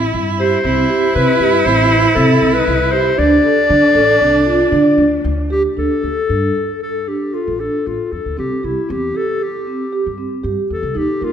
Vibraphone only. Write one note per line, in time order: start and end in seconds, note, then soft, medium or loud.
0.40 0.55 G4 medium
0.65 0.80 C4 medium
0.90 1.05 G4 medium
1.15 1.30 C4 medium
1.40 1.56 G4 medium
1.66 1.81 C4 medium
1.91 2.06 E4 medium
2.17 2.47 C4 medium
2.93 3.08 G4 medium
3.18 3.33 D4 medium
3.44 3.59 A4 medium
3.69 3.85 D4 medium
3.95 4.10 A4 medium
4.20 4.36 D4 medium
4.46 4.61 F4 medium
4.71 5.03 D4 medium
5.50 5.66 G4 medium
5.77 5.93 D4 medium
6.02 6.18 A4 soft
6.29 6.45 D4 soft
6.55 6.87 A4 medium
7.07 7.23 D4 soft
7.34 7.49 A4 medium
7.60 7.75 D4 soft
7.85 8.16 A4 soft
8.37 8.53 C4 medium
8.63 8.79 G4 medium
8.89 9.05 C4 medium
9.15 9.46 G4 medium
9.67 9.83 C4 medium
9.93 10.08 G4 medium
10.18 10.34 C4 medium
10.44 10.75 G4 medium
10.95 11.11 D#4 medium
11.21 11.32 A#4 medium